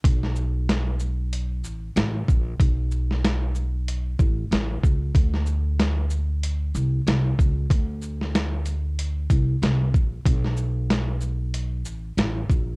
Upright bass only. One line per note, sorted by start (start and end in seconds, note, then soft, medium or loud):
0.04 1.64 B1 loud
1.64 1.89 A1 medium
1.96 2.21 A1 loud
2.28 2.54 A#1 medium
2.60 4.15 B1 loud
4.19 4.45 A1 medium
4.51 4.77 A1 medium
4.84 5.09 C#2 medium
5.15 6.71 D2 loud
6.75 7.00 C2 medium
7.07 7.32 C2 medium
7.39 7.64 C#2 loud
7.70 9.26 D2 loud
9.30 9.55 C2 medium
9.62 9.94 C2 loud
9.94 10.20 A#1 medium
10.26 11.85 B1 loud
11.85 12.11 A1 medium
12.17 12.43 A1 loud
12.50 12.75 A#1 medium